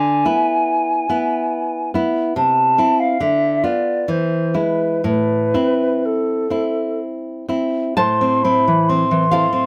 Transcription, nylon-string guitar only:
0.00 0.24 D3 soft
0.25 1.06 B3 soft
0.25 1.06 E4 soft
1.09 1.90 B3 soft
1.09 1.91 E4 soft
1.94 2.33 B3 soft
1.94 2.33 E4 soft
2.36 2.77 C3 soft
2.78 3.17 C4 soft
2.78 3.17 E4 soft
3.20 3.63 D3 soft
3.63 4.05 B3 soft
3.63 4.05 F4 soft
4.08 4.54 E3 soft
4.54 5.00 G#3 soft
4.54 5.01 E4 soft
5.04 5.53 A2 soft
5.54 6.47 C4 soft
5.54 6.47 E4 soft
6.50 7.45 C4 soft
6.50 7.45 E4 soft
7.48 7.95 C4 soft
7.48 7.95 E4 soft
7.97 9.66 A2 soft
7.97 9.28 C5 soft
7.97 9.27 A5 medium
8.21 8.43 C4 soft
8.44 8.65 C4 soft
8.44 8.65 E4 soft
8.68 9.03 E3 soft
8.89 9.24 C4 soft
9.11 9.45 E3 soft
9.31 9.51 C4 soft
9.31 9.51 E4 soft
9.31 9.66 A4 soft
9.31 9.66 F5 medium
9.53 9.66 C4 soft

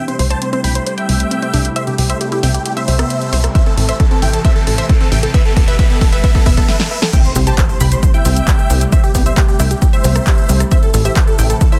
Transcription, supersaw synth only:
0.08 0.15 C5 medium
0.19 0.27 C5 medium
0.31 0.38 C5 medium
0.31 0.38 A5 medium
0.42 0.49 C5 medium
0.53 0.60 C5 medium
0.64 0.71 G5 medium
0.64 0.71 B5 medium
0.75 0.83 C5 medium
0.87 0.94 C5 medium
0.98 1.67 E5 medium
0.98 1.67 G5 loud
1.76 1.83 C5 medium
1.76 1.83 E5 loud
1.87 1.95 G4 medium
1.98 2.06 G4 medium
2.10 2.17 C5 medium
2.10 2.17 E5 medium
2.21 2.28 G4 medium
2.32 2.39 G4 medium
2.43 2.50 E5 medium
2.43 2.50 G5 medium
2.54 2.62 G4 medium
2.65 2.73 G4 medium
2.77 3.46 C5 medium
2.77 3.46 E5 loud
3.55 3.62 C5 medium
3.55 3.62 E5 medium
3.66 3.74 A4 medium
3.77 3.85 A4 medium
3.89 3.96 C5 medium
3.89 3.96 E5 medium
4.00 4.07 A4 medium
4.11 4.18 A4 medium
4.22 4.29 E5 medium
4.22 4.29 G5 medium
4.33 4.41 A4 medium
4.45 4.52 C5 medium
4.45 4.52 E5 medium
4.56 4.63 A4 medium
4.67 4.74 A4 medium
4.78 4.85 C5 medium
4.78 4.85 E5 loud
4.89 4.97 A4 medium
5.00 5.08 A4 medium
5.12 5.19 E5 medium
5.12 5.19 G5 medium
5.23 5.30 A4 medium
5.34 5.41 B4 medium
5.34 5.41 E5 loud
5.45 5.53 A4 medium
5.56 5.64 A4 medium
5.68 5.75 B4 medium
5.68 5.75 E5 medium
5.79 5.86 B4 medium
5.79 5.86 E5 loud
5.90 5.97 A4 medium
6.01 6.09 A4 medium
6.12 6.20 B4 medium
6.12 6.20 E5 medium
6.24 6.31 B4 medium
6.24 6.31 E5 loud
6.35 6.42 A4 medium
6.46 6.53 B4 medium
6.46 6.53 E5 loud
6.57 6.65 A4 medium
6.69 6.76 B4 medium
6.69 6.76 E5 loud
6.80 6.87 A4 medium
6.91 6.98 B4 medium
6.91 6.98 E5 loud
7.02 7.09 A4 medium
7.13 7.21 E5 medium
7.13 7.21 G5 loud
7.25 7.32 C5 medium
7.36 7.43 C5 medium
7.47 7.54 C5 medium
7.47 7.54 A5 medium
7.58 7.65 C5 medium
7.69 7.77 C5 medium
7.81 7.88 G5 medium
7.81 7.88 B5 medium
7.92 7.99 C5 medium
8.03 8.10 C5 medium
8.14 8.83 E5 medium
8.14 8.83 G5 loud
8.92 9.00 C5 medium
8.92 9.00 E5 loud
9.04 9.11 G4 medium
9.15 9.22 G4 medium
9.26 9.33 C5 medium
9.26 9.33 E5 medium
9.37 9.44 G4 medium
9.48 9.56 G4 medium
9.60 9.67 E5 medium
9.60 9.67 G5 medium
9.71 9.78 G4 medium
9.82 9.89 G4 medium
9.93 10.62 C5 medium
9.93 10.62 E5 loud
10.71 10.79 C5 medium
10.71 10.79 E5 loud
10.83 10.90 A4 medium
10.94 11.01 A4 medium
11.05 11.12 C5 medium
11.05 11.12 E5 loud
11.16 11.24 A4 medium
11.28 11.35 A4 medium
11.39 11.46 E5 medium
11.39 11.46 G5 medium
11.50 11.57 A4 medium
11.61 11.68 A4 medium
11.72 11.79 C5 medium
11.72 11.79 E5 loud

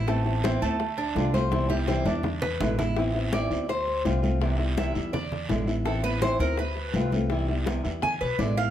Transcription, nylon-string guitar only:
0.07 0.25 E3 medium
0.07 0.25 B3 medium
0.07 0.25 C4 medium
0.07 0.23 E4 medium
0.24 0.43 B3 soft
0.24 0.43 C4 soft
0.24 0.42 E4 soft
0.43 0.61 E3 medium
0.43 0.61 B3 medium
0.43 0.61 C4 medium
0.43 0.60 E4 medium
0.61 0.79 B3 soft
0.61 0.78 C4 soft
0.61 0.79 E4 soft
0.79 muted nylon-string guitar stroke medium
1.15 1.33 D3 medium
1.15 1.33 A3 medium
1.15 1.32 C4 medium
1.15 1.32 F4 medium
1.33 1.51 A3 soft
1.33 1.51 C4 soft
1.33 1.51 F4 soft
1.51 1.69 C3 medium
1.51 1.69 E3 medium
1.51 1.69 G3 medium
1.51 1.69 B3 medium
1.51 1.68 E4 medium
1.69 1.87 G3 soft
1.69 1.87 B3 soft
1.69 1.87 E4 medium
1.88 2.05 C3 medium
1.88 2.05 E3 medium
1.88 2.06 G3 medium
1.88 2.05 B3 medium
1.88 2.04 E4 medium
2.06 2.24 G3 soft
2.06 2.23 B3 soft
2.06 2.23 E4 soft
2.24 muted nylon-string guitar stroke medium
2.60 2.78 B2 medium
2.60 2.78 D3 medium
2.60 2.79 G#3 medium
2.60 2.78 B3 medium
2.60 2.77 E4 medium
2.78 2.97 G#3 soft
2.78 2.96 B3 soft
2.78 2.96 E4 soft
2.97 3.14 E3 medium
2.97 3.14 B3 medium
2.97 3.14 C4 medium
2.97 3.13 E4 medium
3.14 3.32 B3 soft
3.14 3.32 C4 soft
3.14 3.32 E4 medium
3.32 3.50 E3 medium
3.32 3.50 B3 medium
3.32 3.50 C4 medium
3.32 3.49 E4 medium
3.50 3.68 B3 soft
3.50 3.68 C4 soft
3.50 3.68 E4 medium
3.69 muted nylon-string guitar stroke medium
4.04 4.22 D3 medium
4.04 4.23 A3 medium
4.04 4.23 C4 medium
4.04 4.21 F4 medium
4.23 4.41 A3 soft
4.23 4.41 C4 soft
4.23 4.40 F4 soft
4.40 4.58 C3 medium
4.40 4.58 E3 medium
4.40 4.59 G3 medium
4.40 4.58 B3 medium
4.40 4.57 E4 medium
4.58 4.77 G3 soft
4.58 4.77 B3 soft
4.58 4.76 E4 medium
4.77 4.94 C3 medium
4.77 4.95 E3 medium
4.77 4.95 G3 medium
4.77 4.95 B3 medium
4.77 4.93 E4 medium
4.95 5.13 G3 soft
4.95 5.12 B3 soft
4.95 5.12 E4 medium
5.13 muted nylon-string guitar stroke medium
5.48 5.66 B2 medium
5.48 5.67 D3 medium
5.48 5.67 G#3 medium
5.48 5.67 B3 medium
5.48 5.66 E4 medium
5.67 5.86 G#3 soft
5.67 5.85 B3 soft
5.67 5.85 E4 soft
5.85 6.03 E3 medium
5.85 6.03 B3 medium
5.85 6.03 C4 medium
5.85 6.02 E4 medium
6.03 6.21 B3 soft
6.03 6.21 C4 soft
6.03 6.21 E4 medium
6.21 6.39 E3 medium
6.21 6.40 B3 medium
6.21 6.39 C4 medium
6.21 6.39 E4 medium
6.40 6.58 B3 soft
6.40 6.58 C4 soft
6.40 6.57 E4 medium
6.59 muted nylon-string guitar stroke medium
6.94 7.12 D3 medium
6.94 7.12 A3 medium
6.94 7.12 C4 medium
6.94 7.11 F4 medium
7.12 7.31 A3 soft
7.12 7.30 C4 soft
7.12 7.30 F4 soft
7.30 7.48 C3 medium
7.30 7.48 E3 medium
7.30 7.48 G3 medium
7.30 7.48 B3 medium
7.30 7.48 E4 medium
7.49 7.67 G3 soft
7.49 7.66 B3 soft
7.49 7.66 E4 medium
7.66 7.84 C3 medium
7.66 7.84 E3 medium
7.66 7.85 G3 medium
7.66 7.84 B3 medium
7.66 7.83 E4 medium
7.84 8.03 G3 soft
7.84 8.02 B3 soft
7.84 8.02 E4 soft
8.03 muted nylon-string guitar stroke medium
8.39 8.56 B2 medium
8.39 8.57 D3 medium
8.39 8.57 G#3 medium
8.39 8.57 B3 medium
8.39 8.56 E4 medium
8.57 8.70 G#3 soft
8.57 8.70 B3 soft
8.57 8.70 E4 soft

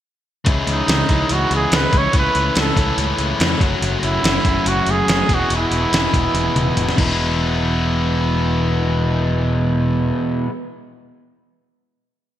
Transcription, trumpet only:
0.67 1.34 D#4 medium
1.32 1.52 F#4 medium
1.55 1.77 G#4 medium
1.75 1.99 B4 medium
1.98 2.17 C#5 medium
2.18 2.55 B4 medium
2.60 2.97 A4 medium
4.03 4.70 E4 medium
4.68 4.92 F#4 medium
4.91 5.36 G#4 loud
5.34 5.53 F#4 medium
5.56 6.75 E4 medium

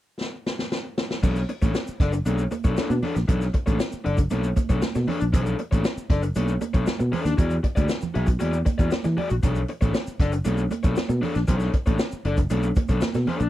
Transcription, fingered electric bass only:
1.23 1.44 B1 loud
1.63 1.72 A1 medium
1.89 muted fingered electric bass stroke soft
2.00 2.20 F#1 medium
2.26 2.46 B1 medium
2.65 2.75 B1 medium
2.90 3.00 B2 loud
3.16 3.26 A#1 medium
3.29 3.49 B1 loud
3.68 3.78 A1 medium
3.93 muted fingered electric bass stroke soft
4.06 4.26 F#1 medium
4.32 4.52 B1 medium
4.70 4.80 B1 loud
4.96 5.05 B2 medium
5.22 5.34 A#1 loud
5.34 5.54 B1 loud
5.72 5.82 A1 medium
5.97 muted fingered electric bass stroke soft
6.10 6.30 F#1 medium
6.36 6.56 B1 medium
6.75 6.85 B1 loud
7.00 7.10 B2 loud
7.25 7.35 D#2 medium
7.38 7.59 E2 loud
7.77 7.87 D2 medium
8.03 muted fingered electric bass stroke soft
8.16 8.36 B1 medium
8.42 8.62 E2 medium
8.79 8.89 E2 medium
9.05 9.15 E3 medium
9.31 9.41 A#1 loud
9.44 9.64 B1 loud
9.82 9.92 A1 medium
10.08 muted fingered electric bass stroke soft
10.20 10.40 F#1 medium
10.46 10.66 B1 medium
10.85 10.95 B1 medium
11.09 11.20 B2 medium
11.36 11.46 A#1 loud
11.49 11.69 B1 loud
11.87 11.97 A1 medium
12.13 muted fingered electric bass stroke soft
12.25 12.45 F#1 medium
12.51 12.71 B1 medium
12.89 12.99 B1 medium
13.15 13.25 B2 medium
13.41 13.49 A#1 loud

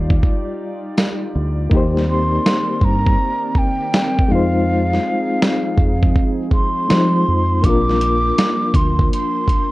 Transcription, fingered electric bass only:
0.00 0.19 D#2 loud
1.35 1.68 D2 medium
1.72 2.38 D#2 loud
2.82 3.15 G2 medium
4.32 4.97 F2 loud
5.78 6.11 F2 medium
6.91 7.23 F3 loud
7.28 7.61 F2 loud
7.64 8.30 A#1 loud
8.74 9.08 D2 medium

